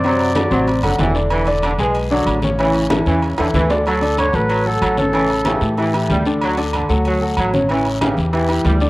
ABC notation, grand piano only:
X:1
M:4/4
L:1/8
Q:1/4=188
K:D
V:1 name="Grand piano"
[=C,=C=c]2 [F,FA] [C,Cc]2 [F,FA]2 [D,Dd]- | [D,Dd] [D,Dd]2 [^G,^GB]2 [D,Dd]2 [C,Cc] | [C,Cc]2 [E,EA] [C,Cc]2 [E,EA]2 [D,Dd] | z [D,Dd]2 [F,FA]2 [F,FA]2 [C,Cc] |
[C,Cc]2 [E,EG]2 [E,EG] [E,EG]2 [D,Dd]- | [D,Dd] [D,Dd]2 [F,FA]2 [F,FA]2 [C,Cc] | [C,Cc]2 [E,EG]2 [E,EG] [E,EG]2 [D,Dd] |]